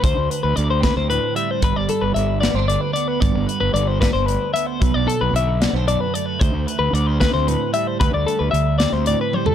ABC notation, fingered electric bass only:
X:1
M:6/8
L:1/16
Q:3/8=75
K:G
V:1 name="Fingered electric bass" clef=bass
D,, D,, z D,, D,,3 D,,2 z3 | G,,, G,,, z G,,, G,,,3 G,,,2 z3 | G,,, G,,, z G,,, G,,,3 G,,,2 z3 | B,,, B,,, z B,,, B,,,3 B,,,2 z3 |
D,, D,, z D,, D,,3 D,,2 z3 | D,, D,, z D,, D,,3 D,,2 z3 |]